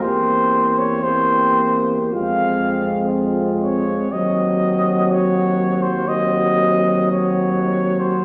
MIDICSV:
0, 0, Header, 1, 6, 480
1, 0, Start_track
1, 0, Tempo, 1005025
1, 21, Time_signature, 4, 2, 24, 8
1, 502, Tempo, 1094891
1, 982, Tempo, 983607
1, 2902, Tempo, 1018676
1, 3382, Tempo, 1214575
1, 3836, End_track
2, 0, Start_track
2, 0, Title_t, "Cornet"
2, 0, Program_c, 0, 56
2, 13, Note_on_c, 0, 72, 67
2, 375, Note_on_c, 0, 73, 64
2, 382, Note_off_c, 0, 72, 0
2, 495, Note_on_c, 0, 72, 75
2, 502, Note_off_c, 0, 73, 0
2, 850, Note_off_c, 0, 72, 0
2, 978, Note_on_c, 0, 77, 74
2, 1447, Note_off_c, 0, 77, 0
2, 1700, Note_on_c, 0, 73, 65
2, 1949, Note_on_c, 0, 75, 61
2, 1956, Note_off_c, 0, 73, 0
2, 2432, Note_on_c, 0, 73, 66
2, 2439, Note_off_c, 0, 75, 0
2, 2778, Note_on_c, 0, 72, 62
2, 2785, Note_off_c, 0, 73, 0
2, 2903, Note_on_c, 0, 75, 69
2, 2910, Note_off_c, 0, 72, 0
2, 3381, Note_off_c, 0, 75, 0
2, 3388, Note_on_c, 0, 73, 58
2, 3740, Note_on_c, 0, 72, 55
2, 3746, Note_off_c, 0, 73, 0
2, 3836, Note_off_c, 0, 72, 0
2, 3836, End_track
3, 0, Start_track
3, 0, Title_t, "French horn section"
3, 0, Program_c, 1, 60
3, 6, Note_on_c, 1, 67, 51
3, 488, Note_off_c, 1, 67, 0
3, 494, Note_on_c, 1, 67, 51
3, 968, Note_off_c, 1, 67, 0
3, 971, Note_on_c, 1, 65, 50
3, 1853, Note_off_c, 1, 65, 0
3, 1936, Note_on_c, 1, 66, 57
3, 2876, Note_off_c, 1, 66, 0
3, 2899, Note_on_c, 1, 66, 48
3, 3836, Note_off_c, 1, 66, 0
3, 3836, End_track
4, 0, Start_track
4, 0, Title_t, "Euphonium"
4, 0, Program_c, 2, 58
4, 17, Note_on_c, 2, 60, 46
4, 490, Note_off_c, 2, 60, 0
4, 497, Note_on_c, 2, 60, 54
4, 906, Note_off_c, 2, 60, 0
4, 980, Note_on_c, 2, 60, 56
4, 1927, Note_off_c, 2, 60, 0
4, 1942, Note_on_c, 2, 60, 54
4, 2879, Note_off_c, 2, 60, 0
4, 2897, Note_on_c, 2, 60, 46
4, 3793, Note_off_c, 2, 60, 0
4, 3836, End_track
5, 0, Start_track
5, 0, Title_t, "Trombone"
5, 0, Program_c, 3, 57
5, 13, Note_on_c, 3, 58, 52
5, 494, Note_off_c, 3, 58, 0
5, 497, Note_on_c, 3, 58, 54
5, 970, Note_off_c, 3, 58, 0
5, 980, Note_on_c, 3, 56, 54
5, 1927, Note_off_c, 3, 56, 0
5, 1946, Note_on_c, 3, 54, 57
5, 2821, Note_off_c, 3, 54, 0
5, 2904, Note_on_c, 3, 54, 52
5, 3836, Note_off_c, 3, 54, 0
5, 3836, End_track
6, 0, Start_track
6, 0, Title_t, "Tuba"
6, 0, Program_c, 4, 58
6, 17, Note_on_c, 4, 40, 52
6, 962, Note_off_c, 4, 40, 0
6, 978, Note_on_c, 4, 41, 56
6, 1863, Note_off_c, 4, 41, 0
6, 1946, Note_on_c, 4, 39, 58
6, 3836, Note_off_c, 4, 39, 0
6, 3836, End_track
0, 0, End_of_file